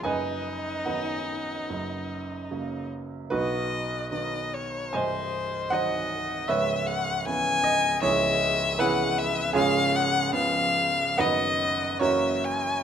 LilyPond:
<<
  \new Staff \with { instrumentName = "Violin" } { \time 4/4 \key b \major \tempo 4 = 75 dis'2.~ dis'8 r8 | dis''4 dis''8 cis''8 bis'4 dis''4 | e''8 fis''8 gis''4 e''4 fis''8 e''8 | eis''8 fis''8 eis''4 dis''4 e''8 gis''8 | }
  \new Staff \with { instrumentName = "Grand piano" } { \time 4/4 \key b \major <b' dis'' gis''>4 <b' dis'' fis''>2 r4 | <dis' fis' b'>2 <bis' dis'' gis''>4 <bis' dis'' fis''>4 | <b' cis'' e''>4. dis''8 <e' gis' cis''>4 <e' gis' b'>4 | <cis' eis' gis'>2 <b' dis'' fis''>4 <fis' ais' cis''>4 | }
  \new Staff \with { instrumentName = "Grand piano" } { \clef bass \time 4/4 \key b \major <fis,, fis,>4 <dis fis b>4 <fis,, fis,>4 <cis fis ais>4 | <b,, b,>4 <dis fis b>4 <bis,,, bis,,>4 <dis fis dis'>4 | <cis,, cis,>4 <cis e b>4 <cis,, cis,>4 <cis e b>4 | <cis,, cis,>4 <cis eis b>4 <fis,, fis, dis fis b>4 <fis,, fis, e fis ais>4 | }
>>